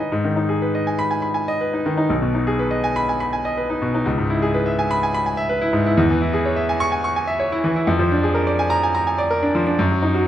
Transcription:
Already playing: G#2 D#3 B4 G#5 B5
0.00 D#4 D#5
0.12 G#2
0.24 D#3
0.36 D#4
0.49 G#4
0.62 B4
0.75 D#5
0.87 G#5
0.99 B5
1.11 G#5
1.22 B5
1.34 G#5
1.48 D#5
1.61 B4
1.73 D#4
1.86 D#3
1.97 D#4
2.10 B1
2.22 B2
2.34 D#4
2.47 G#4
2.59 B4
2.71 D#5
2.84 G#5
2.96 B5
3.09 G#5
3.20 B5
3.33 G#5
3.45 D#5
3.57 B4
3.70 D#4
3.82 B2
3.94 D#4
4.06 C#2
4.18 G#2
4.30 E4
4.42 G#4
4.54 B4
4.66 E5
4.79 G#5
4.91 B5
5.03 G#5
5.14 B5
5.26 G#5
5.37 E5
5.49 B4
5.61 E4
5.73 G#2
5.86 E4
5.97 E2
6.10 E3
6.22 E4
6.33 G#4
6.45 C#5
6.56 E5
6.69 G#5
6.80 C#6
6.92 G#5
7.04 C#6
7.16 G#5
7.27 E5
7.40 C#5
7.52 E4
7.64 E3
7.76 E4
7.87 F2
7.99 F3
8.12 D4
8.23 G#4
8.34 A#4
8.47 D5
8.59 G#5
8.70 A#5
8.83 G#5
8.95 A#5
9.07 G#5
9.18 D5
9.31 A#4
9.43 D4
9.55 F3
9.67 D4
9.79 F#2
9.91 F#3
10.02 D#4
10.14 F#4

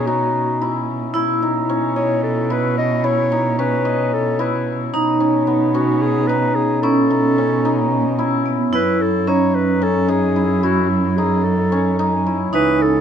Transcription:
Already playing: B2 C#4
0.07 D#4 F#4
0.62 E4
1.14 B2 E4
1.42 D#4
1.69 C#4
1.96 C#5 D#5
2.23 A4
2.50 E4 B4
2.78 D#5
3.04 E4 C#5
3.32 D#4
3.59 C#4 B4
3.85 D#5
4.13 A4
4.39 E4 B4
4.93 B2 D#4
5.20 C#4
5.47 B3
5.74 C#4 F#4
6.01 G#4
6.27 D#4 B4
6.55 G#4
6.82 B2 C#4 E4 A4
7.10 D#4
7.38 C#4
7.65 D#4
8.19 E4
8.46 B3
8.73 F#2 E4 B4
9.01 A4
9.27 C#4 D#4 C#5
9.55 B4
9.82 C#4 A4
10.08 D#4 G#4
10.36 E4
10.63 E4 F#4
10.90 E4
11.17 D#4 G#4
11.44 A4
11.72 C#4
11.99 D#4
12.26 E4
12.53 C#2 E3 D#4 B4
12.82 A4

